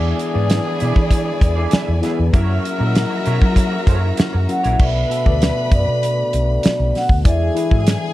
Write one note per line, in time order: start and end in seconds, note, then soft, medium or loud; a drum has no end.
0.00 0.12 E2 loud
0.00 2.31 D3 medium
0.00 0.31 E3 medium
0.00 1.99 E3 medium
0.00 2.31 G#3 medium
0.00 0.31 B3 medium
0.00 2.31 B3 medium
0.00 1.99 D4 medium
0.00 0.16 E4 medium
0.00 2.30 E4 medium
0.00 4.76 E4 medium
0.00 0.16 G#4 medium
0.00 0.32 G#4 medium
0.00 1.99 G#4 medium
0.00 0.17 D5 medium
0.00 0.32 D5 medium
0.00 2.30 D5 medium
0.00 2.30 G#5 medium
0.19 closed hi-hat medium
0.33 0.58 G#2 medium
0.33 1.49 E3 medium
0.33 1.50 B3 medium
0.33 1.50 G#4 medium
0.33 1.50 D5 medium
0.33 muted clean electric guitar stroke soft
0.50 snare loud
0.50 closed hi-hat medium
0.65 muted clean electric guitar stroke soft
0.80 0.93 B2 medium
0.80 0.98 E4 medium
0.80 0.96 G#4 medium
0.80 0.95 D5 medium
0.80 closed hi-hat medium
0.96 1.31 E3 loud
0.96 muted clean electric guitar stroke soft
0.96 kick medium
1.11 muted clean electric guitar stroke soft
1.11 kick medium
1.11 closed hi-hat medium
1.26 muted clean electric guitar stroke soft
1.41 1.65 E2 medium
1.41 kick medium
1.41 closed hi-hat medium
1.56 1.69 E4 medium
1.56 1.70 G#4 medium
1.56 1.72 D5 medium
1.71 1.89 E4 medium
1.71 1.88 G#4 medium
1.71 1.88 E5 medium
1.71 muted fingered electric bass stroke soft
1.71 snare loud
1.71 closed hi-hat medium
1.88 2.00 E2 medium
1.88 muted clean electric guitar stroke soft
2.02 2.31 E3 medium
2.02 2.31 B3 medium
2.02 2.17 E4 medium
2.02 2.32 G#4 medium
2.02 2.17 G#4 medium
2.02 2.32 B4 medium
2.02 2.17 E5 medium
2.02 snare soft
2.02 closed hi-hat medium
2.18 2.31 E2 medium
2.18 muted clean electric guitar stroke soft
2.33 2.57 F#2 loud
2.33 4.77 C#3 medium
2.33 2.77 F#3 medium
2.33 4.44 F#3 medium
2.33 4.77 F#3 medium
2.33 4.77 A#3 medium
2.33 2.77 C#4 medium
2.33 2.62 E4 medium
2.33 4.44 E4 medium
2.33 4.75 F#4 medium
2.33 2.40 G4 medium
2.33 4.45 A#4 medium
2.33 2.62 A#4 medium
2.33 2.62 C#5 medium
2.33 4.75 E5 medium
2.33 2.77 E5 loud
2.33 4.75 A#5 medium
2.33 kick loud
2.33 closed hi-hat medium
2.40 2.78 A#4 medium
2.65 closed hi-hat medium
2.78 3.03 A#2 medium
2.78 3.95 F#3 medium
2.78 3.95 C#4 medium
2.78 3.95 A#4 medium
2.78 2.86 D#5 medium
2.78 muted clean electric guitar stroke soft
2.87 3.99 E5 loud
2.95 snare loud
2.95 closed hi-hat medium
3.10 muted clean electric guitar stroke soft
3.25 3.38 B2 medium
3.25 3.43 E4 medium
3.25 3.40 A#4 medium
3.25 3.40 C#5 medium
3.25 closed hi-hat medium
3.41 3.77 F#3 loud
3.41 muted clean electric guitar stroke soft
3.41 kick loud
3.56 muted clean electric guitar stroke soft
3.56 kick medium
3.56 closed hi-hat medium
3.72 muted clean electric guitar stroke soft
3.86 4.11 F#2 medium
3.86 4.06 E4 medium
3.86 4.02 A#4 medium
3.86 4.01 C#5 medium
3.86 kick loud
3.86 closed hi-hat medium
4.02 muted clean electric guitar stroke soft
4.17 muted clean electric guitar stroke soft
4.17 muted fingered electric bass stroke soft
4.17 snare loud
4.17 closed hi-hat medium
4.33 4.46 F#2 medium
4.33 muted clean electric guitar stroke soft
4.48 4.77 F#3 medium
4.48 4.78 C#4 medium
4.48 4.78 A#4 medium
4.48 4.78 E5 medium
4.48 4.81 F#5 loud
4.48 closed hi-hat medium
4.63 4.76 A#1 medium
4.63 4.82 E4 medium
4.63 4.82 A#4 medium
4.63 4.82 C#5 medium
4.63 closed hi-hat medium
4.79 5.03 B1 loud
4.79 5.08 B2 medium
4.79 7.22 D3 medium
4.79 7.23 A3 medium
4.79 5.09 B3 medium
4.79 8.13 B3 medium
4.79 7.23 F#4 medium
4.79 5.09 A4 medium
4.79 6.91 B4 medium
4.79 5.09 D5 medium
4.79 5.75 E5 loud
4.79 6.91 B5 loud
4.79 kick loud
4.79 crash medium
5.10 5.24 B2 medium
5.10 5.24 B3 medium
5.10 5.25 A4 medium
5.10 5.26 E5 medium
5.10 closed hi-hat medium
5.25 5.49 D2 medium
5.25 6.41 B2 medium
5.25 6.41 B3 medium
5.25 6.41 A4 medium
5.25 6.42 D5 medium
5.25 kick medium
5.42 snare loud
5.42 closed hi-hat loud
5.72 5.84 F#2 medium
5.72 6.99 D5 medium
5.72 kick medium
5.72 closed hi-hat medium
5.88 6.22 B2 loud
6.03 closed hi-hat medium
6.33 6.57 B1 medium
6.33 closed hi-hat medium
6.63 muted fingered electric bass stroke soft
6.63 snare loud
6.63 closed hi-hat loud
6.80 6.91 B1 medium
6.95 7.10 F#5 medium
6.95 snare soft
6.95 open hi-hat medium
7.09 7.21 D2 medium
7.09 kick medium
7.24 7.49 E2 loud
7.24 8.13 D3 medium
7.24 7.53 E3 medium
7.24 8.13 G#3 medium
7.24 8.13 E4 medium
7.24 7.54 E4 medium
7.24 7.54 G#4 medium
7.24 8.13 G#4 loud
7.24 7.54 D5 medium
7.24 8.13 G#5 loud
7.24 kick loud
7.24 closed hi-hat medium
7.28 7.84 E5 medium
7.55 7.69 E3 medium
7.55 7.70 E4 medium
7.55 7.70 G#4 medium
7.55 7.71 B4 medium
7.55 closed hi-hat medium
7.71 7.95 G#2 loud
7.71 8.13 E3 medium
7.71 8.13 E4 medium
7.71 7.78 F#4 medium
7.71 8.13 E5 medium
7.71 kick medium
7.79 8.13 G#4 medium
7.87 snare loud
7.87 closed hi-hat loud